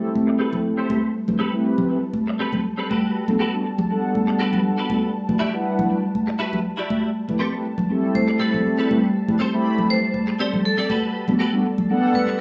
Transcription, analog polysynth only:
Already playing: A3 C4 E4 G4 A4
0.90 A3 C4 E4 G4 B4
1.28 A3 C4 E4 G4 B4
1.53 A3 C4 E4 G4 B4
1.90 A3 C4 E4 G4 B4
3.28 G3 B3 D4 F#4 A4
3.53 G3 B3 D4 F#4 A4
3.89 G3 B3 D4 A4 F#5
4.90 G3 B3 D4 F#4 A4
5.28 G3 D4 E4 F#4 B4
5.53 G3 D4 E4 B4 F#5
5.90 G3 D4 E4 F#4 B4
7.28 A3 C4 E4 G4 B4
7.53 A3 C4 E4 G4 B4
7.89 A3 C4 E4 G4 A4
8.90 A3 C4 E4 G4 B4
9.28 A3 C4 E4 G4 B4
9.53 A3 C4 E4 G4 B5
9.90 A3 C4 E4 G4 B4
11.28 G3 B3 D4 F#4 A4
11.53 G3 B3 D4 F#4 A4
11.89 G3 B3 D4 A4 F#5

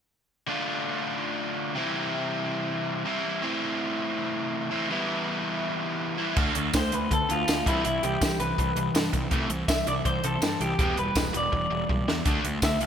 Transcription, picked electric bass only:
6.37 D2
6.56 D2
6.74 D2
6.94 D2
7.11 D2
7.31 D2
7.48 D2
7.67 C2
7.86 C2
8.03 C2
8.22 C2
8.40 C2
8.58 C2
8.76 C2
8.95 G2
9.13 C2
9.32 C2
9.50 C2
9.68 C2
9.87 C2
10.05 C2
10.24 C2
10.42 G2
10.60 C2
10.79 E1
10.97 E1
11.16 E1
11.34 E1
11.53 E1
11.70 E1
11.90 B1
12.08 E2
12.26 D2
12.44 D2
12.63 D2
12.81 D2

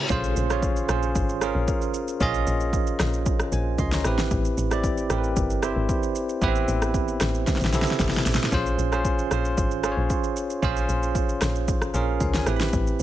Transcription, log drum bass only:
0.10 A#1
0.36 A#1
0.89 A#1
1.15 G#1
1.55 A#1
2.21 A#1
2.47 A#1
3.00 A#1
3.52 A#1
3.78 C#2
4.05 A1
4.31 A1
4.58 A1
5.10 A1
5.37 G1
5.76 G#1
6.42 A1
6.68 A1
7.21 A1
7.61 A1
7.73 A#1
8.00 G1
8.26 A1
8.52 A#1
8.78 A#1
9.31 A#1
9.58 G#1
9.97 A#1
10.63 A#1
10.89 A#1
11.41 A#1
11.94 A#1
12.21 C#2
12.47 A1
12.73 A1
13.00 A1

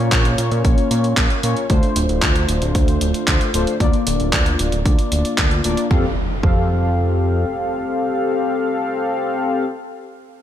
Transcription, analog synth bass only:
0.00 A#2
0.12 A#1
0.38 A#2
0.52 A#2
0.65 A#1
0.91 A#2
1.17 A#1
1.43 A#2
1.70 D2
1.96 D1
2.09 D1
2.22 D2
2.49 D1
2.62 D1
2.75 D2
3.01 D1
3.28 D2
3.54 D1
3.80 D2
4.07 D1
4.20 D1
4.33 D2
4.59 D1
4.73 D1
4.86 D2
5.12 D1
5.38 D2
5.65 D1
5.91 F2
6.43 F2

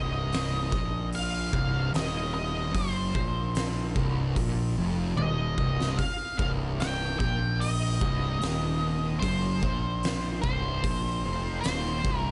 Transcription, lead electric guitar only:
Already playing: D#5
1.15 F5
1.96 D#5
2.34 D#5
2.75 C5
5.17 D#5
5.99 F5
6.38 F5
6.80 G5
7.19 G5
7.60 D#5
9.20 C5
10.42 C5
11.61 C5
12.18 A#4

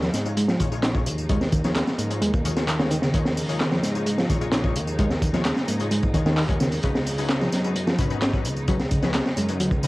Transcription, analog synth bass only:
Already playing: D#2
0.14 G#2
0.60 A#1
1.06 D#2
1.98 G#2
2.22 D#2
3.14 D#2
3.83 G#2
4.29 A#1
4.76 D#2
5.68 G#2
6.14 C#2
6.26 D#2
6.84 C#2
7.52 F#2
7.99 G#1
8.45 C#2
9.37 F#2
9.60 C#2

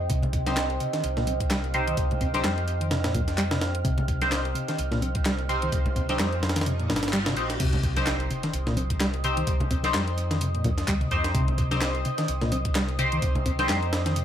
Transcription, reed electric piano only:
0.10 C3
0.80 C3
0.93 D#3
1.17 A#2
1.27 C4
1.51 G3
1.74 C3
1.88 D#3
2.21 C4
2.44 G3
2.81 D#3
2.91 C3
3.05 A#2
3.15 A#2
3.38 G3
3.51 C3
3.85 C3
4.55 C3
4.68 D#3
4.92 A#2
5.02 C4
5.26 G3
5.49 C3
5.63 D#3
5.97 C4
6.20 G3
6.56 D#3
6.66 C3
6.80 A#2
6.90 A#2
7.13 G3
7.26 C3
7.60 C3
8.30 C3
8.43 D#3
8.67 A#2
8.77 C4
9.00 G3
9.24 C3
9.37 D#3
9.71 C4
9.94 G3
10.31 D#3
10.41 C3
10.54 A#2
10.65 A#2
10.88 G3
11.01 C3
11.35 C3
12.05 C3
12.18 D#3
12.42 A#2
12.52 C4
12.75 G3
12.99 C3
13.13 D#3
13.46 C4
13.69 G3
14.06 D#3
14.16 C3

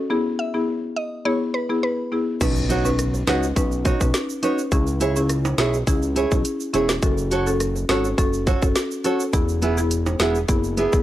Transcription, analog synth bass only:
2.41 B1
3.28 C#2
3.56 B1
4.01 B1
4.72 C#2
5.58 B1
5.87 C#2
6.32 B1
6.74 E1
7.03 F#1
7.89 G#1
8.18 F#1
8.63 F#1
9.33 E1
10.20 E1
10.49 F#1
10.93 E1

